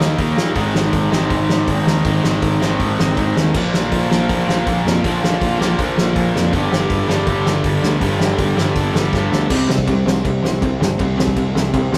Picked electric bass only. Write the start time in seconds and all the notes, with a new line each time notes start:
0.00 D#2
0.18 D#2
0.37 A#2
0.56 G#1
0.73 G#1
0.93 G#1
1.12 G#1
1.30 G#1
1.49 G#1
1.68 G#1
1.86 D#2
2.05 G#1
2.23 G#1
2.43 G#1
2.61 G#1
2.80 G#1
2.99 G#1
3.17 G#1
3.36 D#2
3.55 A#1
3.74 A#1
3.92 A#1
4.11 A#1
4.29 A#1
4.48 A#1
4.67 A#1
4.85 F2
5.04 A#1
5.22 A#1
5.41 A#1
5.60 A#1
5.79 A#1
5.97 A#1
6.16 A#1
6.35 F2
6.53 G1
6.71 G1
6.90 G1
7.09 G1
7.27 G1
7.45 G1
7.64 G1
7.82 D2
8.01 G1
8.19 G1
8.38 G1
8.55 G1
8.76 G1
8.92 G1
9.13 G1
9.31 D2
9.50 C2
9.68 C2
9.88 C2
10.06 C2
10.25 C2
10.43 C2
10.62 C2
10.80 G1
11.00 C2
11.18 C2
11.37 C2
11.55 C2
11.74 C2
11.92 C2